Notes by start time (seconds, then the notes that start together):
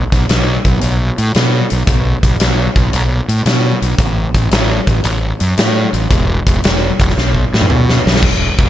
0.12 B1, kick, snare, closed hi-hat
0.29 B1, snare, closed hi-hat
0.65 B1, kick, closed hi-hat
0.81 B1, closed hi-hat
1.18 A2, closed hi-hat
1.35 B2, snare, closed hi-hat
1.70 B1, closed hi-hat
1.87 B1, kick, closed hi-hat
2.23 B1, kick, closed hi-hat
2.40 B1, snare, closed hi-hat
2.76 B1, kick, closed hi-hat
2.93 B1, closed hi-hat
3.28 A2, closed hi-hat
3.46 B2, snare, closed hi-hat
3.82 B1, closed hi-hat
3.98 A1, kick, closed hi-hat
4.34 A1, kick, closed hi-hat
4.51 A1, snare, closed hi-hat
4.87 A1, kick, closed hi-hat
5.04 A1, closed hi-hat
5.40 F#2, closed hi-hat
5.57 A2, snare, closed hi-hat
5.93 A1, closed hi-hat
6.11 E1, kick, closed hi-hat
6.47 E1, kick, closed hi-hat
6.64 E1, snare, closed hi-hat
7.00 E1, kick, closed hi-hat
7.09 snare
7.17 B1, snare
7.34 kick
7.53 A2, snare
7.61 mid tom
7.70 B2, mid tom
7.89 snare
8.06 B1, snare
8.16 snare
8.22 E1, kick, crash
8.59 E1, kick, ride